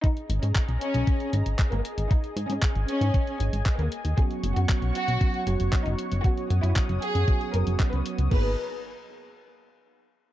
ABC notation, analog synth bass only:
X:1
M:4/4
L:1/16
Q:1/4=116
K:G#m
V:1 name="Analog synth bass" clef=bass
z2 G,,, G,, z B,,, z B,,, z2 G,,, G,,, z G,,, z G,,, | z2 G,, G,, z G,,, z G,, z2 G,,, G,,, z D,, z D,, | z2 F,,, F,, z B,,, z B,,, z2 F,,, F,,, z F,,, z F,,, | z2 F,, F,, z F,,, z F,, z2 F,,, F,,, z C,, z C,, |
G,,,2 z12 z2 |]